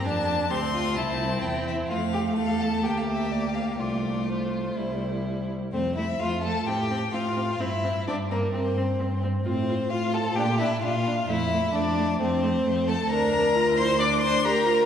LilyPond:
<<
  \new Staff \with { instrumentName = "Violin" } { \time 4/4 \key f \major \tempo 4 = 129 a''4 c'''4 a''4 g''8 e''8 | f''4 f''8 a''8 g''16 f''16 e''8 d''8 f''8 | d''4 c''2~ c''8 r8 | c''8 e''8 f''8 a''8 g''4 f''4 |
e''4 d''8 bes'8 c''4. r8 | c''4 f''8 a''8 g''8 e''8 f''4 | e''4 d''4 c''4. a''8 | bes''4. c'''8 d'''8 c'''8 bes''4 | }
  \new Staff \with { instrumentName = "Violin" } { \time 4/4 \key f \major g'4 g'8 f'8 e'8 e'4. | f'8 g'8 a'4 g'2 | f'2 e'4. r8 | c'8 e'8 f'8 a'8 g'4 f'4 |
e'4 d'8 bes8 c'4. r8 | c'4 f'8 a'8 g'8 e'8 f'4 | e'4 d'4 c'4. a'8 | bes'4. c''8 d''8 c''8 bes'4 | }
  \new Staff \with { instrumentName = "Viola" } { \time 4/4 \key f \major d'4 c'4 c'2 | a2 bes4 bes4 | a2 g4. r8 | a8 a8 a8 a8 c'8 c'8 c'8 c'8 |
c'8 c'8 c'8 c'8 c'8 c'8 c'8 c'8 | f'8 f'8 f'8 f'8 d'8 d'8 d'8 d'8 | a8 a8 a8 a8 a8 a8 a8 a8 | d'4 f'8 e'8 d'4 g'8 f'8 | }
  \new Staff \with { instrumentName = "Cello" } { \clef bass \time 4/4 \key f \major f,4 d,4 c,4 e,4 | f,4 e,4 d,2 | c,2 c,4. r8 | f,4 f,4 a,4 a,4 |
g,4 g,4 g,4 g,4 | a,4 a,4 bes,4 bes,4 | f,4 f,4 f,4 f,4 | d,1 | }
>>